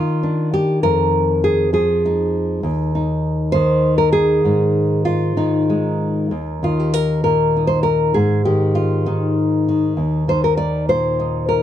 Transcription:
Already playing: D#3 D4 F4
0.23 D4
0.54 G4
0.83 F2 A#4
1.44 G#4
1.73 F3 G#4
2.05 D#4
2.63 D#2
2.95 D#4
3.52 D#3 C5
3.98 A#4
4.13 G#4
4.44 G#2 D#4
5.05 F4
5.37 D#3 D#4
5.70 G#3
6.31 D#2
6.63 D#3 F4
6.79 G4
6.94 A#4
7.24 A#2 A#4
7.57 D#4
7.67 C5
7.83 A#4
8.14 G#2 G#4
8.45 D#3 G4
8.75 F4
9.06 D#3 D#4
9.68 D#3
9.97 D#2
10.28 D#3 C5
10.44 A#4
10.57 D5
10.89 A#2 C5
11.20 D#4
11.49 A#4

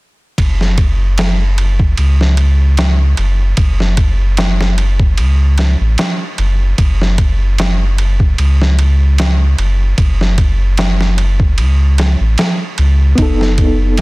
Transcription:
0.38 F#1, kick, ride
0.61 snare
0.78 kick, ride
1.18 snare, ride
1.58 ride
1.79 kick
1.97 C#2, ride
2.21 snare
2.37 ride
2.77 snare, ride
3.17 F#1, ride
3.57 F#1, kick, ride
3.80 snare
3.97 kick, ride
4.37 snare, ride
4.61 snare
4.78 ride
5.00 kick
5.17 C#2, ride
5.58 snare, ride
5.80 A1
5.98 snare, ride
6.38 F#1, ride
6.78 F#1, kick, ride
7.01 snare
7.18 kick, ride
7.58 snare, ride
7.98 ride
8.20 kick
8.38 C#2, ride
8.62 snare
8.79 ride
9.18 snare, ride
9.58 F#1, ride
9.98 F#1, kick, ride
10.21 snare
10.38 kick, ride
10.77 snare, ride
11.01 snare
11.18 ride
11.40 kick
11.58 C#2, ride
11.98 snare, ride
12.20 A1
12.38 snare, ride
12.78 C#2, ride
13.15 F#1 B3 D#4, kick, ride
13.22 A4
13.41 snare
13.58 kick, ride
13.97 ride

